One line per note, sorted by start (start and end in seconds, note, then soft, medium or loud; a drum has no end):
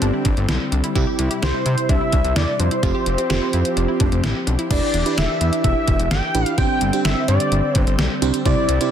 0.00 0.12 G1 loud
0.00 0.94 D3 medium
0.00 2.79 G3 medium
0.00 0.29 C4 medium
0.00 0.94 C4 medium
0.00 0.29 D4 medium
0.00 0.09 D4 medium
0.00 0.29 G4 medium
0.00 closed hi-hat medium
0.13 0.21 E4 medium
0.25 0.35 G1 loud
0.25 0.40 D4 medium
0.25 kick medium
0.25 closed hi-hat medium
0.37 0.47 G1 loud
0.37 closed hi-hat soft
0.49 0.59 B1 medium
0.49 0.63 E4 medium
0.49 snare loud
0.49 closed hi-hat medium
0.72 0.82 C2 medium
0.72 0.79 D4 medium
0.72 closed hi-hat medium
0.84 0.91 E4 medium
0.84 closed hi-hat medium
0.95 1.05 C2 loud
0.95 2.81 C3 medium
0.95 1.32 C4 medium
0.95 1.03 E4 medium
0.95 1.32 E4 medium
0.95 2.81 E4 medium
0.95 1.32 G4 loud
0.95 kick loud
0.95 closed hi-hat medium
1.07 1.22 G4 medium
1.19 1.29 C2 loud
1.19 closed hi-hat medium
1.31 1.38 G4 medium
1.31 closed hi-hat medium
1.42 1.52 C2 loud
1.42 2.16 C4 medium
1.42 2.16 E4 medium
1.42 1.50 G4 medium
1.42 2.16 G4 medium
1.42 1.91 C5 loud
1.42 snare loud
1.42 closed hi-hat medium
1.54 1.61 E4 medium
1.66 1.76 C3 loud
1.66 1.80 E4 medium
1.66 closed hi-hat medium
1.78 closed hi-hat medium
1.89 1.99 C2 loud
1.89 1.96 D4 medium
1.89 2.38 E5 loud
1.89 kick medium
1.89 closed hi-hat medium
2.01 2.08 E4 medium
2.12 2.23 C2 loud
2.12 2.27 D4 medium
2.12 kick medium
2.12 closed hi-hat medium
2.25 2.34 C2 loud
2.25 closed hi-hat soft
2.36 2.46 E2 medium
2.36 2.51 E4 medium
2.36 2.61 D5 loud
2.36 snare loud
2.36 closed hi-hat medium
2.60 2.70 F2 medium
2.60 2.67 D4 medium
2.60 4.47 C5 loud
2.60 closed hi-hat medium
2.71 2.78 E4 medium
2.71 closed hi-hat medium
2.83 2.93 F1 loud
2.83 4.69 F3 medium
2.83 3.20 C4 medium
2.83 4.69 C4 medium
2.83 2.90 F4 loud
2.83 3.20 F4 medium
2.83 3.20 G4 medium
2.83 4.69 G4 medium
2.83 kick loud
2.83 closed hi-hat medium
2.95 3.09 G4 medium
3.06 3.16 F1 loud
3.06 closed hi-hat medium
3.18 3.25 G4 medium
3.18 closed hi-hat medium
3.30 3.40 F1 loud
3.30 4.04 C4 medium
3.30 4.04 F4 medium
3.30 3.37 G4 medium
3.30 4.04 G4 loud
3.30 snare loud
3.30 closed hi-hat medium
3.42 3.49 E4 medium
3.53 3.63 F2 loud
3.53 3.68 E4 medium
3.53 closed hi-hat medium
3.65 closed hi-hat medium
3.77 3.87 F1 loud
3.77 3.84 D4 medium
3.77 closed hi-hat medium
3.88 3.96 E4 medium
4.00 4.10 F1 loud
4.00 4.14 D4 medium
4.00 kick medium
4.00 closed hi-hat medium
4.12 4.22 F1 loud
4.12 closed hi-hat soft
4.23 4.34 A1 medium
4.23 4.38 E4 medium
4.23 snare loud
4.23 closed hi-hat medium
4.47 4.57 B1 medium
4.47 4.54 D4 medium
4.47 closed hi-hat medium
4.59 4.66 E4 medium
4.59 closed hi-hat medium
4.71 4.81 E1 loud
4.71 6.56 E3 medium
4.71 4.98 D4 medium
4.71 6.57 D4 medium
4.71 4.98 E4 medium
4.71 4.98 G4 medium
4.71 6.56 G4 medium
4.71 4.98 B4 medium
4.71 5.19 D5 loud
4.71 kick loud
4.71 closed hi-hat medium
4.71 crash loud
4.94 5.04 E1 loud
4.94 closed hi-hat medium
5.06 5.79 D4 medium
5.06 5.79 E4 medium
5.06 5.79 G4 medium
5.06 5.79 B4 medium
5.06 closed hi-hat medium
5.18 5.27 E1 loud
5.18 5.64 E5 loud
5.18 snare loud
5.18 closed hi-hat medium
5.41 5.51 E2 loud
5.41 closed hi-hat medium
5.53 closed hi-hat medium
5.64 5.74 E1 loud
5.64 6.08 E5 loud
5.64 kick loud
5.64 closed hi-hat medium
5.88 5.98 E1 loud
5.88 kick medium
5.88 closed hi-hat medium
6.00 6.09 E1 loud
6.00 closed hi-hat soft
6.11 6.21 G1 medium
6.11 6.55 G5 loud
6.11 snare loud
6.11 closed hi-hat medium
6.35 6.45 A1 medium
6.35 6.53 D4 medium
6.35 6.53 E4 medium
6.35 6.53 G4 medium
6.35 6.53 B4 medium
6.35 closed hi-hat medium
6.46 closed hi-hat medium
6.58 6.68 G1 loud
6.58 8.44 D3 medium
6.58 8.91 G3 medium
6.58 8.44 C4 medium
6.58 6.86 C4 medium
6.58 6.86 D4 medium
6.58 6.86 G4 medium
6.58 6.86 C5 medium
6.58 7.02 G5 loud
6.58 kick loud
6.58 closed hi-hat medium
6.81 6.92 G1 loud
6.81 closed hi-hat medium
6.93 7.67 C4 medium
6.93 7.67 D4 medium
6.93 7.67 G4 medium
6.93 7.67 C5 medium
6.93 closed hi-hat medium
7.05 7.15 G1 loud
7.05 7.27 E5 loud
7.05 snare loud
7.05 closed hi-hat medium
7.28 7.38 G2 loud
7.28 7.78 D5 medium
7.28 closed hi-hat medium
7.40 closed hi-hat medium
7.52 7.62 G1 loud
7.52 closed hi-hat medium
7.75 7.85 G1 loud
7.75 7.95 C5 medium
7.75 kick medium
7.75 closed hi-hat medium
7.87 7.97 G1 loud
7.87 closed hi-hat soft
7.99 8.09 B1 medium
7.99 snare loud
7.99 closed hi-hat medium
8.22 8.32 C2 loud
8.22 8.41 C4 medium
8.22 8.41 D4 medium
8.22 8.41 G4 medium
8.22 8.41 C5 loud
8.22 closed hi-hat medium
8.34 closed hi-hat medium
8.46 8.55 C2 loud
8.46 8.91 C3 medium
8.46 8.73 C4 medium
8.46 8.73 E4 medium
8.46 8.91 E4 medium
8.46 8.73 G4 medium
8.46 8.73 C5 medium
8.46 8.89 D5 loud
8.46 kick loud
8.46 closed hi-hat medium
8.69 8.79 C2 loud
8.69 closed hi-hat medium
8.81 8.91 C4 medium
8.81 8.91 E4 medium
8.81 8.91 G4 medium
8.81 8.91 C5 medium
8.81 closed hi-hat medium